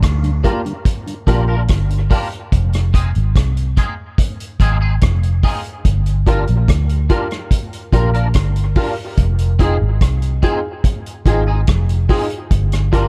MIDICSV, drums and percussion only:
0, 0, Header, 1, 2, 480
1, 0, Start_track
1, 0, Tempo, 832639
1, 1454, Time_signature, 4, 2, 24, 8
1, 7540, End_track
2, 0, Start_track
2, 0, Title_t, "Drums"
2, 15, Note_on_c, 9, 36, 107
2, 16, Note_on_c, 9, 42, 103
2, 22, Note_on_c, 9, 37, 125
2, 73, Note_off_c, 9, 36, 0
2, 74, Note_off_c, 9, 42, 0
2, 79, Note_off_c, 9, 37, 0
2, 137, Note_on_c, 9, 42, 50
2, 195, Note_off_c, 9, 42, 0
2, 256, Note_on_c, 9, 36, 85
2, 256, Note_on_c, 9, 42, 73
2, 313, Note_off_c, 9, 36, 0
2, 313, Note_off_c, 9, 42, 0
2, 379, Note_on_c, 9, 42, 38
2, 437, Note_off_c, 9, 42, 0
2, 492, Note_on_c, 9, 36, 107
2, 495, Note_on_c, 9, 42, 92
2, 550, Note_off_c, 9, 36, 0
2, 552, Note_off_c, 9, 42, 0
2, 618, Note_on_c, 9, 42, 51
2, 676, Note_off_c, 9, 42, 0
2, 732, Note_on_c, 9, 36, 91
2, 736, Note_on_c, 9, 42, 79
2, 790, Note_off_c, 9, 36, 0
2, 794, Note_off_c, 9, 42, 0
2, 971, Note_on_c, 9, 42, 87
2, 977, Note_on_c, 9, 36, 124
2, 981, Note_on_c, 9, 37, 112
2, 1028, Note_off_c, 9, 42, 0
2, 1034, Note_off_c, 9, 36, 0
2, 1038, Note_off_c, 9, 37, 0
2, 1098, Note_on_c, 9, 42, 50
2, 1155, Note_off_c, 9, 42, 0
2, 1213, Note_on_c, 9, 46, 82
2, 1215, Note_on_c, 9, 36, 101
2, 1271, Note_off_c, 9, 46, 0
2, 1272, Note_off_c, 9, 36, 0
2, 1335, Note_on_c, 9, 42, 36
2, 1393, Note_off_c, 9, 42, 0
2, 1454, Note_on_c, 9, 36, 105
2, 1455, Note_on_c, 9, 42, 89
2, 1512, Note_off_c, 9, 36, 0
2, 1513, Note_off_c, 9, 42, 0
2, 1575, Note_on_c, 9, 42, 62
2, 1584, Note_on_c, 9, 37, 76
2, 1633, Note_off_c, 9, 42, 0
2, 1641, Note_off_c, 9, 37, 0
2, 1695, Note_on_c, 9, 36, 92
2, 1698, Note_on_c, 9, 42, 77
2, 1752, Note_off_c, 9, 36, 0
2, 1756, Note_off_c, 9, 42, 0
2, 1815, Note_on_c, 9, 42, 34
2, 1873, Note_off_c, 9, 42, 0
2, 1935, Note_on_c, 9, 36, 113
2, 1936, Note_on_c, 9, 42, 98
2, 1942, Note_on_c, 9, 37, 122
2, 1992, Note_off_c, 9, 36, 0
2, 1994, Note_off_c, 9, 42, 0
2, 1999, Note_off_c, 9, 37, 0
2, 2057, Note_on_c, 9, 42, 50
2, 2114, Note_off_c, 9, 42, 0
2, 2173, Note_on_c, 9, 42, 72
2, 2174, Note_on_c, 9, 36, 79
2, 2231, Note_off_c, 9, 42, 0
2, 2232, Note_off_c, 9, 36, 0
2, 2411, Note_on_c, 9, 36, 103
2, 2414, Note_on_c, 9, 42, 88
2, 2469, Note_off_c, 9, 36, 0
2, 2472, Note_off_c, 9, 42, 0
2, 2537, Note_on_c, 9, 42, 55
2, 2595, Note_off_c, 9, 42, 0
2, 2650, Note_on_c, 9, 36, 87
2, 2654, Note_on_c, 9, 42, 76
2, 2708, Note_off_c, 9, 36, 0
2, 2712, Note_off_c, 9, 42, 0
2, 2890, Note_on_c, 9, 42, 91
2, 2895, Note_on_c, 9, 36, 116
2, 2900, Note_on_c, 9, 37, 117
2, 2948, Note_off_c, 9, 42, 0
2, 2953, Note_off_c, 9, 36, 0
2, 2958, Note_off_c, 9, 37, 0
2, 3016, Note_on_c, 9, 42, 51
2, 3074, Note_off_c, 9, 42, 0
2, 3132, Note_on_c, 9, 46, 82
2, 3133, Note_on_c, 9, 36, 100
2, 3190, Note_off_c, 9, 36, 0
2, 3190, Note_off_c, 9, 46, 0
2, 3253, Note_on_c, 9, 42, 36
2, 3310, Note_off_c, 9, 42, 0
2, 3372, Note_on_c, 9, 36, 111
2, 3373, Note_on_c, 9, 42, 88
2, 3430, Note_off_c, 9, 36, 0
2, 3430, Note_off_c, 9, 42, 0
2, 3493, Note_on_c, 9, 42, 59
2, 3551, Note_off_c, 9, 42, 0
2, 3612, Note_on_c, 9, 36, 97
2, 3615, Note_on_c, 9, 42, 77
2, 3670, Note_off_c, 9, 36, 0
2, 3672, Note_off_c, 9, 42, 0
2, 3732, Note_on_c, 9, 42, 37
2, 3790, Note_off_c, 9, 42, 0
2, 3853, Note_on_c, 9, 36, 113
2, 3855, Note_on_c, 9, 42, 102
2, 3861, Note_on_c, 9, 37, 123
2, 3911, Note_off_c, 9, 36, 0
2, 3913, Note_off_c, 9, 42, 0
2, 3918, Note_off_c, 9, 37, 0
2, 3974, Note_on_c, 9, 42, 48
2, 4031, Note_off_c, 9, 42, 0
2, 4091, Note_on_c, 9, 42, 72
2, 4092, Note_on_c, 9, 36, 82
2, 4149, Note_off_c, 9, 42, 0
2, 4150, Note_off_c, 9, 36, 0
2, 4212, Note_on_c, 9, 42, 38
2, 4219, Note_on_c, 9, 37, 69
2, 4270, Note_off_c, 9, 42, 0
2, 4277, Note_off_c, 9, 37, 0
2, 4329, Note_on_c, 9, 36, 99
2, 4331, Note_on_c, 9, 42, 91
2, 4386, Note_off_c, 9, 36, 0
2, 4389, Note_off_c, 9, 42, 0
2, 4455, Note_on_c, 9, 42, 53
2, 4513, Note_off_c, 9, 42, 0
2, 4569, Note_on_c, 9, 36, 92
2, 4571, Note_on_c, 9, 42, 75
2, 4626, Note_off_c, 9, 36, 0
2, 4629, Note_off_c, 9, 42, 0
2, 4694, Note_on_c, 9, 42, 36
2, 4752, Note_off_c, 9, 42, 0
2, 4806, Note_on_c, 9, 42, 89
2, 4813, Note_on_c, 9, 36, 116
2, 4816, Note_on_c, 9, 37, 115
2, 4864, Note_off_c, 9, 42, 0
2, 4871, Note_off_c, 9, 36, 0
2, 4874, Note_off_c, 9, 37, 0
2, 4933, Note_on_c, 9, 42, 53
2, 4991, Note_off_c, 9, 42, 0
2, 5047, Note_on_c, 9, 46, 85
2, 5051, Note_on_c, 9, 36, 104
2, 5105, Note_off_c, 9, 46, 0
2, 5108, Note_off_c, 9, 36, 0
2, 5289, Note_on_c, 9, 42, 89
2, 5290, Note_on_c, 9, 36, 106
2, 5347, Note_off_c, 9, 42, 0
2, 5348, Note_off_c, 9, 36, 0
2, 5410, Note_on_c, 9, 42, 61
2, 5468, Note_off_c, 9, 42, 0
2, 5531, Note_on_c, 9, 36, 100
2, 5533, Note_on_c, 9, 42, 76
2, 5588, Note_off_c, 9, 36, 0
2, 5591, Note_off_c, 9, 42, 0
2, 5771, Note_on_c, 9, 36, 117
2, 5772, Note_on_c, 9, 42, 98
2, 5777, Note_on_c, 9, 37, 123
2, 5829, Note_off_c, 9, 36, 0
2, 5830, Note_off_c, 9, 42, 0
2, 5835, Note_off_c, 9, 37, 0
2, 5891, Note_on_c, 9, 42, 50
2, 5949, Note_off_c, 9, 42, 0
2, 6010, Note_on_c, 9, 42, 71
2, 6012, Note_on_c, 9, 36, 83
2, 6068, Note_off_c, 9, 42, 0
2, 6069, Note_off_c, 9, 36, 0
2, 6249, Note_on_c, 9, 36, 102
2, 6252, Note_on_c, 9, 42, 84
2, 6307, Note_off_c, 9, 36, 0
2, 6310, Note_off_c, 9, 42, 0
2, 6377, Note_on_c, 9, 42, 57
2, 6434, Note_off_c, 9, 42, 0
2, 6489, Note_on_c, 9, 36, 98
2, 6492, Note_on_c, 9, 42, 83
2, 6547, Note_off_c, 9, 36, 0
2, 6550, Note_off_c, 9, 42, 0
2, 6729, Note_on_c, 9, 42, 82
2, 6734, Note_on_c, 9, 36, 112
2, 6739, Note_on_c, 9, 37, 120
2, 6786, Note_off_c, 9, 42, 0
2, 6791, Note_off_c, 9, 36, 0
2, 6796, Note_off_c, 9, 37, 0
2, 6855, Note_on_c, 9, 42, 54
2, 6912, Note_off_c, 9, 42, 0
2, 6972, Note_on_c, 9, 36, 98
2, 6972, Note_on_c, 9, 46, 85
2, 7030, Note_off_c, 9, 36, 0
2, 7030, Note_off_c, 9, 46, 0
2, 7091, Note_on_c, 9, 42, 39
2, 7148, Note_off_c, 9, 42, 0
2, 7211, Note_on_c, 9, 36, 108
2, 7211, Note_on_c, 9, 42, 83
2, 7269, Note_off_c, 9, 36, 0
2, 7269, Note_off_c, 9, 42, 0
2, 7333, Note_on_c, 9, 42, 59
2, 7341, Note_on_c, 9, 37, 80
2, 7390, Note_off_c, 9, 42, 0
2, 7398, Note_off_c, 9, 37, 0
2, 7452, Note_on_c, 9, 36, 92
2, 7456, Note_on_c, 9, 42, 76
2, 7510, Note_off_c, 9, 36, 0
2, 7514, Note_off_c, 9, 42, 0
2, 7540, End_track
0, 0, End_of_file